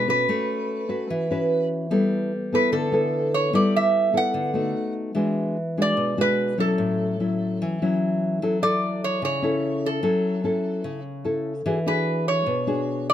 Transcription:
Already playing: B2
0.08 C#4 F#4 B4
0.29 A3
0.89 C#4 F#4 B4
1.10 E3
1.31 C#4 F#4 B4
1.90 G3 B3 E4 A4
2.52 B3 E4 A4 B4
2.72 D3 A4
2.92 B3 E4 A4
3.34 C#5
3.53 G3 B3 E4 A4 D5
3.76 E5
4.13 B3 E4 A4 F#5
4.34 D3
4.54 A3 D#4 F#4
5.15 E3 G#3 D4 F#4
5.77 G#3 D4 F#4
5.82 D5
5.97 B2
6.17 G#3 D4 F#4 B4
6.58 F#3 C#4 E4 A4
6.78 A2
7.20 F#3 C#4 E4
7.62 E3
7.82 F#3 C#4 E4
8.42 F#3 C#4 E4 A4
8.62 E4 A4 D5
9.04 C#5
9.22 C#3 C#5
9.42 C#4 E4 A4
9.86 A4
10.03 F#3 C#4 E4 A4
10.44 C#4 E4 A4
10.84 C#3
11.24 C#4 E4 A4
11.66 E3 D4 F#4 G#4
11.86 D4 F#4 G#4 B4
12.28 C#5
12.46 B2
12.67 D4 F#4 G#4
13.10 D5

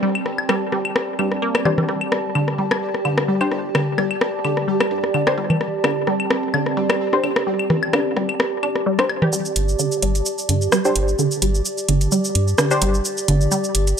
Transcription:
Already playing: G3 C4 G4 D5 A5
0.03 G3
0.15 claves
0.26 G1, cross-stick, closed hi-hat
0.38 claves
0.49 G3, cross-stick, claves
0.72 G1 G3, cross-stick, closed hi-hat
0.85 closed hi-hat, claves
0.96 cross-stick
1.19 G2 G3, closed hi-hat, claves
1.31 cross-stick, closed hi-hat
1.42 A#3
1.55 cross-stick, claves
1.65 G1 G3 D4 G4 C5, closed hi-hat, low conga, claves
1.78 G3, cross-stick, low conga
1.89 G3 G4, cross-stick
2.01 claves
2.12 G1, cross-stick, closed hi-hat
2.35 D3, claves
2.48 cross-stick
2.58 G1 G3, closed hi-hat
2.71 cross-stick, claves
2.94 cross-stick
3.05 G2 D3, closed hi-hat, claves
3.18 cross-stick
3.28 G3
3.41 D4 G4 C5, claves
3.51 G1, cross-stick, closed hi-hat
3.75 D3, cross-stick, claves
3.98 G1 G3, cross-stick, closed hi-hat, claves
4.11 claves
4.21 cross-stick
4.44 G1 D3, closed hi-hat, claves
4.57 cross-stick, closed hi-hat
4.68 G3
4.80 cross-stick, claves
4.91 G2, closed hi-hat
5.04 cross-stick, closed hi-hat
5.14 D3, claves
5.27 D4 G4 C5, cross-stick, claves
5.37 G1 G3, closed hi-hat
5.50 low conga, claves
5.61 C4, cross-stick
5.84 G1 D3, cross-stick, closed hi-hat, claves
6.07 G3, cross-stick
6.20 claves
6.30 G1, cross-stick, closed hi-hat
6.43 closed hi-hat
6.54 D3, claves
6.66 cross-stick
6.77 G2 G3, closed hi-hat
6.90 cross-stick, claves
7.13 D4 G4 C5, cross-stick
7.24 G1 D3, closed hi-hat, claves
7.36 cross-stick
7.47 G3
7.59 claves
7.70 G1, cross-stick, closed hi-hat, low conga
7.83 claves
7.93 D3, cross-stick, claves
8.17 G1 G3, cross-stick, closed hi-hat
8.29 closed hi-hat, claves
8.40 cross-stick
8.63 G1 D4, closed hi-hat, claves
8.76 cross-stick, closed hi-hat
8.86 G3
8.99 D4 G4 C5, cross-stick, claves
9.09 G1, closed hi-hat, claves
9.22 G4, cross-stick, low conga
9.33 G3, shaker
9.45 shaker
9.56 G1, closed hi-hat
9.69 shaker
9.79 D3, shaker
9.92 shaker
10.02 G1 G3, closed hi-hat
10.15 closed hi-hat, shaker
10.26 shaker
10.38 shaker
10.49 G2 D3, closed hi-hat
10.62 shaker
10.72 G3, cross-stick, shaker
10.85 D4 G4 C5, shaker
10.95 G1, closed hi-hat
11.08 shaker
11.19 D3, shaker
11.31 shaker
11.42 G1 G3, closed hi-hat
11.55 shaker
11.65 shaker
11.78 shaker
11.88 G1 D3, closed hi-hat
12.01 closed hi-hat, shaker
12.12 G3, shaker
12.24 shaker
12.35 G2, closed hi-hat
12.48 shaker
12.58 D3, cross-stick, shaker
12.71 D4 G4 C5, shaker
12.82 G1 G3, closed hi-hat
12.94 shaker
13.05 shaker
13.18 shaker
13.28 G1 D3, closed hi-hat
13.41 shaker
13.51 G3, shaker
13.64 shaker
13.75 G1, closed hi-hat
13.87 closed hi-hat, shaker

